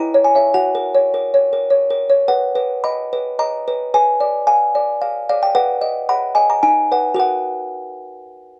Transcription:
0.00 0.52 E4 medium
0.00 0.23 A#5 medium
0.14 0.34 C#5 soft
0.24 0.53 G#5 medium
0.35 0.52 C#5 soft
0.35 0.53 E5 soft
0.54 2.25 F#4 medium
0.54 1.97 F#5 medium
0.75 1.06 A#4 soft
0.95 1.25 C#5 soft
1.14 1.45 A#4 soft
1.34 1.65 C#5 soft
1.53 1.84 A#4 soft
1.70 2.02 C#5 soft
1.90 2.21 A#4 soft
2.10 2.29 C#5 soft
2.28 2.54 B4 medium
2.28 2.82 F#5 medium
2.55 3.01 B4 medium
2.84 3.29 D#5 soft
2.84 3.37 B5 medium
3.13 3.56 B4 soft
3.39 3.83 D#5 soft
3.39 3.92 A#5 medium
3.68 3.93 B4 soft
3.94 5.51 B4 medium
3.94 4.46 G#5 loud
4.20 4.64 D5 medium
4.47 4.91 F5 medium
4.47 5.25 G#5 medium
4.75 5.18 D5 medium
5.02 5.28 F5 medium
5.29 5.56 D5 soft
5.29 5.42 F5 medium
5.43 5.56 G5 loud
5.55 6.61 B4 medium
5.55 6.07 F#5 loud
5.81 6.25 D#5 medium
6.09 6.53 F#5 medium
6.09 6.36 B5 loud
6.35 6.63 D#5 medium
6.35 6.50 G#5 medium
6.50 6.64 A#5 medium
6.63 7.18 D#4 medium
6.63 7.17 G#5 loud
6.92 7.17 B4 soft
6.92 7.17 F#5 soft
7.14 8.60 F#4 medium
7.14 8.60 A#4 medium
7.20 8.58 F#5 medium

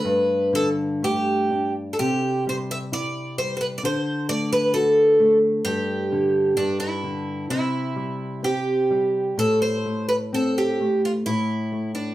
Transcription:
0.00 0.50 B4 medium
0.05 1.95 G2 medium
0.53 1.01 D3 soft
0.53 0.68 A4 medium
1.02 1.50 A3 soft
1.02 1.72 G4 medium
1.51 1.98 D4 soft
1.93 1.99 A4 medium
1.99 3.79 C3 medium
1.99 2.43 G4 medium
2.47 2.91 G3 soft
2.47 2.55 C5 medium
2.71 2.77 E5 medium
2.92 3.36 E4 soft
2.92 3.38 D5 medium
3.38 3.82 G3 soft
3.38 3.55 C5 medium
3.57 3.60 C5 medium
3.61 3.66 B4 medium
3.78 3.84 D5 medium
3.83 5.60 D3 medium
3.83 4.29 C5 medium
4.29 4.72 A3 soft
4.29 4.52 D5 medium
4.53 4.75 B4 medium
4.74 5.18 F#4 soft
4.74 5.37 A4 medium
5.20 5.63 A3 soft
5.65 6.54 G2 medium
5.65 6.52 G4 loud
6.12 6.56 D3 soft
6.57 7.46 G2 medium
6.57 6.78 D4 medium
6.80 7.45 E4 medium
7.03 7.48 D3 soft
7.50 9.36 C3 medium
7.50 8.40 E4 medium
7.96 8.42 G3 soft
8.43 8.90 C4 soft
8.43 9.36 G4 medium
8.91 9.37 G3 soft
9.38 11.22 A2 medium
9.38 9.61 A4 medium
9.62 10.06 C5 medium
9.86 10.32 A3 soft
10.09 10.15 B4 medium
10.33 10.79 C4 soft
10.33 10.58 A4 medium
10.58 11.01 G4 medium
10.80 11.25 A3 soft
11.05 11.11 F4 medium
11.26 12.14 A2 medium
11.26 11.91 E4 medium
11.72 12.14 A3 soft
11.95 12.14 D4 medium

